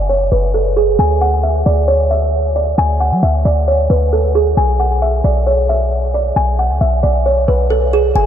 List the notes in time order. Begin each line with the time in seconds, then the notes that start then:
Already playing: F#1
0.09 C#5
0.32 F#1 B4
0.54 A4
0.76 G#4
0.99 D2 G#5
1.21 F#5
1.43 E5
1.66 D2 D5
1.88 C#5
2.11 E5
2.56 D5
2.78 D2 G#5
3.00 F#5
3.12 F#3
3.23 D2 E5
3.45 D2 D5
3.68 C#5
3.90 D2 B4
4.13 A4
4.35 G#4
4.57 B1 G#5
4.80 F#5
5.02 E5
5.24 B1 D5
5.47 C#5
5.69 E5
6.14 D5
6.36 B1 G#5
6.59 F#5
6.70 C#2
6.81 B1 E5
7.03 B1 D5
7.26 C#5
7.48 B1 B4
7.70 A4
7.93 G#4
8.15 F#1 G#5